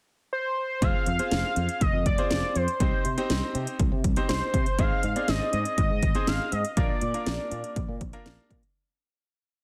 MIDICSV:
0, 0, Header, 1, 5, 480
1, 0, Start_track
1, 0, Tempo, 495868
1, 794, Time_signature, 4, 2, 24, 8
1, 9325, End_track
2, 0, Start_track
2, 0, Title_t, "Analog synth lead"
2, 0, Program_c, 0, 81
2, 316, Note_on_c, 0, 72, 94
2, 795, Note_on_c, 0, 77, 115
2, 810, Note_off_c, 0, 72, 0
2, 1755, Note_on_c, 0, 75, 98
2, 1770, Note_off_c, 0, 77, 0
2, 1992, Note_off_c, 0, 75, 0
2, 1998, Note_on_c, 0, 74, 101
2, 2475, Note_on_c, 0, 72, 89
2, 2489, Note_off_c, 0, 74, 0
2, 3434, Note_off_c, 0, 72, 0
2, 4153, Note_on_c, 0, 72, 99
2, 4633, Note_on_c, 0, 77, 113
2, 4648, Note_off_c, 0, 72, 0
2, 5113, Note_on_c, 0, 75, 102
2, 5127, Note_off_c, 0, 77, 0
2, 5348, Note_off_c, 0, 75, 0
2, 5354, Note_on_c, 0, 75, 114
2, 6072, Note_on_c, 0, 77, 100
2, 6087, Note_off_c, 0, 75, 0
2, 6312, Note_on_c, 0, 75, 93
2, 6326, Note_off_c, 0, 77, 0
2, 6546, Note_off_c, 0, 75, 0
2, 6551, Note_on_c, 0, 74, 93
2, 7954, Note_off_c, 0, 74, 0
2, 9325, End_track
3, 0, Start_track
3, 0, Title_t, "Grand piano"
3, 0, Program_c, 1, 0
3, 792, Note_on_c, 1, 65, 66
3, 793, Note_on_c, 1, 60, 74
3, 793, Note_on_c, 1, 68, 68
3, 793, Note_on_c, 1, 72, 80
3, 1012, Note_off_c, 1, 65, 0
3, 1012, Note_off_c, 1, 68, 0
3, 1013, Note_off_c, 1, 60, 0
3, 1013, Note_off_c, 1, 72, 0
3, 1153, Note_on_c, 1, 68, 65
3, 1154, Note_on_c, 1, 60, 68
3, 1154, Note_on_c, 1, 65, 66
3, 1154, Note_on_c, 1, 72, 77
3, 1738, Note_off_c, 1, 68, 0
3, 1739, Note_off_c, 1, 60, 0
3, 1739, Note_off_c, 1, 65, 0
3, 1739, Note_off_c, 1, 72, 0
3, 2115, Note_on_c, 1, 60, 75
3, 2115, Note_on_c, 1, 68, 65
3, 2115, Note_on_c, 1, 72, 82
3, 2116, Note_on_c, 1, 65, 67
3, 2480, Note_off_c, 1, 60, 0
3, 2480, Note_off_c, 1, 65, 0
3, 2480, Note_off_c, 1, 68, 0
3, 2480, Note_off_c, 1, 72, 0
3, 2714, Note_on_c, 1, 60, 72
3, 2714, Note_on_c, 1, 63, 67
3, 2714, Note_on_c, 1, 67, 66
3, 2714, Note_on_c, 1, 72, 80
3, 2933, Note_off_c, 1, 60, 0
3, 2933, Note_off_c, 1, 63, 0
3, 2933, Note_off_c, 1, 67, 0
3, 2933, Note_off_c, 1, 72, 0
3, 3073, Note_on_c, 1, 60, 84
3, 3074, Note_on_c, 1, 63, 77
3, 3074, Note_on_c, 1, 67, 80
3, 3074, Note_on_c, 1, 72, 95
3, 3658, Note_off_c, 1, 60, 0
3, 3659, Note_off_c, 1, 63, 0
3, 3659, Note_off_c, 1, 67, 0
3, 3659, Note_off_c, 1, 72, 0
3, 4035, Note_on_c, 1, 60, 73
3, 4035, Note_on_c, 1, 63, 69
3, 4035, Note_on_c, 1, 67, 67
3, 4036, Note_on_c, 1, 72, 81
3, 4400, Note_off_c, 1, 60, 0
3, 4400, Note_off_c, 1, 63, 0
3, 4400, Note_off_c, 1, 67, 0
3, 4400, Note_off_c, 1, 72, 0
3, 4634, Note_on_c, 1, 60, 75
3, 4634, Note_on_c, 1, 63, 66
3, 4634, Note_on_c, 1, 68, 65
3, 4634, Note_on_c, 1, 72, 80
3, 4853, Note_off_c, 1, 60, 0
3, 4853, Note_off_c, 1, 63, 0
3, 4853, Note_off_c, 1, 68, 0
3, 4853, Note_off_c, 1, 72, 0
3, 4995, Note_on_c, 1, 60, 71
3, 4995, Note_on_c, 1, 68, 66
3, 4995, Note_on_c, 1, 74, 80
3, 4996, Note_on_c, 1, 63, 67
3, 5579, Note_off_c, 1, 60, 0
3, 5579, Note_off_c, 1, 63, 0
3, 5579, Note_off_c, 1, 68, 0
3, 5579, Note_off_c, 1, 74, 0
3, 5953, Note_on_c, 1, 60, 75
3, 5954, Note_on_c, 1, 63, 68
3, 5954, Note_on_c, 1, 72, 81
3, 5955, Note_on_c, 1, 68, 69
3, 6319, Note_off_c, 1, 60, 0
3, 6319, Note_off_c, 1, 63, 0
3, 6319, Note_off_c, 1, 72, 0
3, 6320, Note_off_c, 1, 68, 0
3, 6553, Note_on_c, 1, 65, 69
3, 6554, Note_on_c, 1, 58, 74
3, 6554, Note_on_c, 1, 62, 68
3, 6554, Note_on_c, 1, 70, 81
3, 6773, Note_off_c, 1, 58, 0
3, 6773, Note_off_c, 1, 62, 0
3, 6773, Note_off_c, 1, 65, 0
3, 6773, Note_off_c, 1, 70, 0
3, 6912, Note_on_c, 1, 58, 72
3, 6912, Note_on_c, 1, 62, 66
3, 6913, Note_on_c, 1, 65, 66
3, 6913, Note_on_c, 1, 70, 77
3, 7498, Note_off_c, 1, 58, 0
3, 7498, Note_off_c, 1, 62, 0
3, 7498, Note_off_c, 1, 65, 0
3, 7498, Note_off_c, 1, 70, 0
3, 7872, Note_on_c, 1, 65, 78
3, 7872, Note_on_c, 1, 70, 96
3, 7873, Note_on_c, 1, 58, 85
3, 7873, Note_on_c, 1, 62, 79
3, 8238, Note_off_c, 1, 65, 0
3, 8238, Note_off_c, 1, 70, 0
3, 8239, Note_off_c, 1, 58, 0
3, 8239, Note_off_c, 1, 62, 0
3, 9325, End_track
4, 0, Start_track
4, 0, Title_t, "Fretless electric bass"
4, 0, Program_c, 2, 35
4, 794, Note_on_c, 2, 29, 104
4, 895, Note_off_c, 2, 29, 0
4, 1034, Note_on_c, 2, 41, 92
4, 1135, Note_off_c, 2, 41, 0
4, 1273, Note_on_c, 2, 29, 99
4, 1374, Note_off_c, 2, 29, 0
4, 1513, Note_on_c, 2, 41, 89
4, 1614, Note_off_c, 2, 41, 0
4, 1755, Note_on_c, 2, 29, 98
4, 1856, Note_off_c, 2, 29, 0
4, 1873, Note_on_c, 2, 41, 91
4, 1975, Note_off_c, 2, 41, 0
4, 1993, Note_on_c, 2, 29, 88
4, 2095, Note_off_c, 2, 29, 0
4, 2234, Note_on_c, 2, 29, 91
4, 2335, Note_off_c, 2, 29, 0
4, 2473, Note_on_c, 2, 41, 95
4, 2574, Note_off_c, 2, 41, 0
4, 2713, Note_on_c, 2, 36, 105
4, 2815, Note_off_c, 2, 36, 0
4, 2952, Note_on_c, 2, 48, 91
4, 3054, Note_off_c, 2, 48, 0
4, 3191, Note_on_c, 2, 36, 93
4, 3294, Note_off_c, 2, 36, 0
4, 3433, Note_on_c, 2, 48, 94
4, 3534, Note_off_c, 2, 48, 0
4, 3674, Note_on_c, 2, 36, 104
4, 3775, Note_off_c, 2, 36, 0
4, 3792, Note_on_c, 2, 48, 98
4, 3894, Note_off_c, 2, 48, 0
4, 3914, Note_on_c, 2, 36, 91
4, 4015, Note_off_c, 2, 36, 0
4, 4153, Note_on_c, 2, 36, 103
4, 4254, Note_off_c, 2, 36, 0
4, 4393, Note_on_c, 2, 48, 97
4, 4495, Note_off_c, 2, 48, 0
4, 4633, Note_on_c, 2, 32, 104
4, 4734, Note_off_c, 2, 32, 0
4, 4873, Note_on_c, 2, 44, 93
4, 4975, Note_off_c, 2, 44, 0
4, 5114, Note_on_c, 2, 32, 90
4, 5215, Note_off_c, 2, 32, 0
4, 5353, Note_on_c, 2, 44, 98
4, 5455, Note_off_c, 2, 44, 0
4, 5594, Note_on_c, 2, 32, 104
4, 5695, Note_off_c, 2, 32, 0
4, 5713, Note_on_c, 2, 44, 90
4, 5814, Note_off_c, 2, 44, 0
4, 5833, Note_on_c, 2, 32, 87
4, 5935, Note_off_c, 2, 32, 0
4, 6073, Note_on_c, 2, 32, 95
4, 6175, Note_off_c, 2, 32, 0
4, 6313, Note_on_c, 2, 44, 97
4, 6415, Note_off_c, 2, 44, 0
4, 6553, Note_on_c, 2, 34, 103
4, 6655, Note_off_c, 2, 34, 0
4, 6793, Note_on_c, 2, 46, 93
4, 6894, Note_off_c, 2, 46, 0
4, 7032, Note_on_c, 2, 34, 101
4, 7134, Note_off_c, 2, 34, 0
4, 7273, Note_on_c, 2, 46, 94
4, 7375, Note_off_c, 2, 46, 0
4, 7515, Note_on_c, 2, 34, 94
4, 7616, Note_off_c, 2, 34, 0
4, 7633, Note_on_c, 2, 46, 93
4, 7735, Note_off_c, 2, 46, 0
4, 7754, Note_on_c, 2, 34, 96
4, 7855, Note_off_c, 2, 34, 0
4, 7993, Note_on_c, 2, 34, 98
4, 8094, Note_off_c, 2, 34, 0
4, 8233, Note_on_c, 2, 46, 97
4, 8334, Note_off_c, 2, 46, 0
4, 9325, End_track
5, 0, Start_track
5, 0, Title_t, "Drums"
5, 793, Note_on_c, 9, 36, 102
5, 794, Note_on_c, 9, 42, 78
5, 890, Note_off_c, 9, 36, 0
5, 891, Note_off_c, 9, 42, 0
5, 1030, Note_on_c, 9, 42, 74
5, 1127, Note_off_c, 9, 42, 0
5, 1154, Note_on_c, 9, 42, 54
5, 1251, Note_off_c, 9, 42, 0
5, 1272, Note_on_c, 9, 42, 68
5, 1273, Note_on_c, 9, 38, 110
5, 1369, Note_off_c, 9, 42, 0
5, 1370, Note_off_c, 9, 38, 0
5, 1513, Note_on_c, 9, 42, 68
5, 1610, Note_off_c, 9, 42, 0
5, 1633, Note_on_c, 9, 42, 50
5, 1730, Note_off_c, 9, 42, 0
5, 1754, Note_on_c, 9, 36, 89
5, 1754, Note_on_c, 9, 42, 71
5, 1850, Note_off_c, 9, 42, 0
5, 1851, Note_off_c, 9, 36, 0
5, 1993, Note_on_c, 9, 42, 73
5, 1994, Note_on_c, 9, 36, 81
5, 2090, Note_off_c, 9, 36, 0
5, 2090, Note_off_c, 9, 42, 0
5, 2111, Note_on_c, 9, 42, 51
5, 2208, Note_off_c, 9, 42, 0
5, 2232, Note_on_c, 9, 38, 113
5, 2235, Note_on_c, 9, 42, 69
5, 2329, Note_off_c, 9, 38, 0
5, 2331, Note_off_c, 9, 42, 0
5, 2474, Note_on_c, 9, 42, 64
5, 2570, Note_off_c, 9, 42, 0
5, 2593, Note_on_c, 9, 42, 50
5, 2690, Note_off_c, 9, 42, 0
5, 2713, Note_on_c, 9, 36, 98
5, 2713, Note_on_c, 9, 42, 77
5, 2810, Note_off_c, 9, 36, 0
5, 2810, Note_off_c, 9, 42, 0
5, 2951, Note_on_c, 9, 42, 71
5, 3047, Note_off_c, 9, 42, 0
5, 3076, Note_on_c, 9, 42, 53
5, 3172, Note_off_c, 9, 42, 0
5, 3193, Note_on_c, 9, 42, 66
5, 3194, Note_on_c, 9, 38, 107
5, 3290, Note_off_c, 9, 42, 0
5, 3291, Note_off_c, 9, 38, 0
5, 3436, Note_on_c, 9, 42, 68
5, 3533, Note_off_c, 9, 42, 0
5, 3554, Note_on_c, 9, 42, 49
5, 3651, Note_off_c, 9, 42, 0
5, 3674, Note_on_c, 9, 36, 90
5, 3674, Note_on_c, 9, 42, 72
5, 3770, Note_off_c, 9, 42, 0
5, 3771, Note_off_c, 9, 36, 0
5, 3914, Note_on_c, 9, 36, 84
5, 3914, Note_on_c, 9, 42, 75
5, 4010, Note_off_c, 9, 42, 0
5, 4011, Note_off_c, 9, 36, 0
5, 4031, Note_on_c, 9, 42, 52
5, 4127, Note_off_c, 9, 42, 0
5, 4153, Note_on_c, 9, 38, 115
5, 4156, Note_on_c, 9, 42, 70
5, 4250, Note_off_c, 9, 38, 0
5, 4253, Note_off_c, 9, 42, 0
5, 4392, Note_on_c, 9, 36, 87
5, 4395, Note_on_c, 9, 42, 65
5, 4489, Note_off_c, 9, 36, 0
5, 4491, Note_off_c, 9, 42, 0
5, 4513, Note_on_c, 9, 42, 51
5, 4610, Note_off_c, 9, 42, 0
5, 4633, Note_on_c, 9, 36, 103
5, 4633, Note_on_c, 9, 42, 77
5, 4729, Note_off_c, 9, 42, 0
5, 4730, Note_off_c, 9, 36, 0
5, 4870, Note_on_c, 9, 42, 74
5, 4967, Note_off_c, 9, 42, 0
5, 4995, Note_on_c, 9, 42, 54
5, 5091, Note_off_c, 9, 42, 0
5, 5112, Note_on_c, 9, 42, 68
5, 5113, Note_on_c, 9, 38, 112
5, 5209, Note_off_c, 9, 38, 0
5, 5209, Note_off_c, 9, 42, 0
5, 5353, Note_on_c, 9, 42, 70
5, 5450, Note_off_c, 9, 42, 0
5, 5473, Note_on_c, 9, 42, 49
5, 5570, Note_off_c, 9, 42, 0
5, 5593, Note_on_c, 9, 42, 76
5, 5594, Note_on_c, 9, 36, 86
5, 5690, Note_off_c, 9, 42, 0
5, 5691, Note_off_c, 9, 36, 0
5, 5833, Note_on_c, 9, 42, 74
5, 5834, Note_on_c, 9, 36, 82
5, 5930, Note_off_c, 9, 42, 0
5, 5931, Note_off_c, 9, 36, 0
5, 5950, Note_on_c, 9, 42, 54
5, 6047, Note_off_c, 9, 42, 0
5, 6073, Note_on_c, 9, 38, 117
5, 6075, Note_on_c, 9, 42, 71
5, 6169, Note_off_c, 9, 38, 0
5, 6172, Note_off_c, 9, 42, 0
5, 6313, Note_on_c, 9, 42, 66
5, 6410, Note_off_c, 9, 42, 0
5, 6433, Note_on_c, 9, 42, 52
5, 6530, Note_off_c, 9, 42, 0
5, 6553, Note_on_c, 9, 36, 99
5, 6553, Note_on_c, 9, 42, 78
5, 6650, Note_off_c, 9, 36, 0
5, 6650, Note_off_c, 9, 42, 0
5, 6790, Note_on_c, 9, 42, 73
5, 6887, Note_off_c, 9, 42, 0
5, 6914, Note_on_c, 9, 42, 54
5, 7011, Note_off_c, 9, 42, 0
5, 7032, Note_on_c, 9, 42, 66
5, 7033, Note_on_c, 9, 38, 115
5, 7129, Note_off_c, 9, 42, 0
5, 7130, Note_off_c, 9, 38, 0
5, 7274, Note_on_c, 9, 42, 68
5, 7371, Note_off_c, 9, 42, 0
5, 7395, Note_on_c, 9, 42, 51
5, 7491, Note_off_c, 9, 42, 0
5, 7514, Note_on_c, 9, 42, 76
5, 7515, Note_on_c, 9, 36, 88
5, 7611, Note_off_c, 9, 42, 0
5, 7612, Note_off_c, 9, 36, 0
5, 7753, Note_on_c, 9, 42, 75
5, 7754, Note_on_c, 9, 36, 83
5, 7850, Note_off_c, 9, 42, 0
5, 7851, Note_off_c, 9, 36, 0
5, 7871, Note_on_c, 9, 42, 52
5, 7968, Note_off_c, 9, 42, 0
5, 7993, Note_on_c, 9, 38, 115
5, 7996, Note_on_c, 9, 42, 72
5, 8090, Note_off_c, 9, 38, 0
5, 8093, Note_off_c, 9, 42, 0
5, 8233, Note_on_c, 9, 36, 89
5, 8234, Note_on_c, 9, 42, 66
5, 8330, Note_off_c, 9, 36, 0
5, 8331, Note_off_c, 9, 42, 0
5, 8354, Note_on_c, 9, 42, 50
5, 8451, Note_off_c, 9, 42, 0
5, 9325, End_track
0, 0, End_of_file